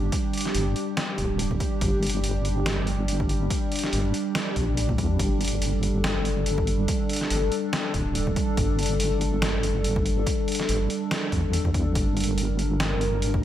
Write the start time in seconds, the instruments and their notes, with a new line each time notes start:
Already playing: wobble bass G1, analog synth pad G3 D4 G4
0.12 kick, closed hi-hat
0.33 closed hi-hat
0.38 closed hi-hat
0.41 closed hi-hat
0.45 snare
0.55 wobble bass G1, closed hi-hat
0.76 closed hi-hat
0.97 snare, closed hi-hat
1.18 wobble bass D1, kick, closed hi-hat
1.39 closed hi-hat
1.51 kick
1.60 kick, closed hi-hat
1.81 wobble bass G1, kick, closed hi-hat
2.03 closed hi-hat
2.07 closed hi-hat
2.10 closed hi-hat
2.24 closed hi-hat
2.45 closed hi-hat
2.66 snare, closed hi-hat
2.87 closed hi-hat
3.08 closed hi-hat
3.20 kick
3.29 closed hi-hat
3.50 kick, closed hi-hat
3.72 closed hi-hat
3.76 closed hi-hat
3.79 closed hi-hat
3.84 snare
3.93 wobble bass G1, closed hi-hat
4.14 closed hi-hat
4.35 snare, closed hi-hat
4.56 wobble bass A#1, kick, closed hi-hat
4.77 closed hi-hat
4.89 kick
4.98 wobble bass E2, kick, closed hi-hat
5.19 wobble bass G1, analog synth pad A4, kick, closed hi-hat
5.41 closed hi-hat
5.45 closed hi-hat
5.48 closed hi-hat
5.62 closed hi-hat
5.83 closed hi-hat
6.04 snare, closed hi-hat
6.25 closed hi-hat
6.46 closed hi-hat
6.58 kick
6.67 closed hi-hat
6.88 kick, closed hi-hat
7.09 closed hi-hat
7.13 closed hi-hat
7.16 closed hi-hat
7.21 snare
7.30 wobble bass G1, closed hi-hat
7.52 closed hi-hat
7.73 snare, closed hi-hat
7.94 wobble bass D1, kick, closed hi-hat
8.15 closed hi-hat
8.27 kick
8.36 kick, closed hi-hat
8.57 wobble bass G1, kick, closed hi-hat
8.79 closed hi-hat
8.83 closed hi-hat
8.86 closed hi-hat
9.00 closed hi-hat
9.21 closed hi-hat
9.42 snare, closed hi-hat
9.63 closed hi-hat
9.84 closed hi-hat
9.96 kick
10.06 closed hi-hat
10.27 kick, closed hi-hat
10.48 closed hi-hat
10.52 closed hi-hat
10.55 closed hi-hat
10.60 snare
10.69 wobble bass G1, closed hi-hat
10.90 closed hi-hat
11.11 snare, closed hi-hat
11.32 wobble bass E2, kick, closed hi-hat
11.53 closed hi-hat
11.65 kick
11.74 kick, closed hi-hat
11.95 wobble bass G1, analog synth pad A#4, kick, closed hi-hat
12.17 closed hi-hat
12.20 closed hi-hat
12.24 closed hi-hat
12.38 closed hi-hat
12.59 closed hi-hat
12.80 snare, closed hi-hat
13.01 closed hi-hat
13.22 closed hi-hat
13.34 kick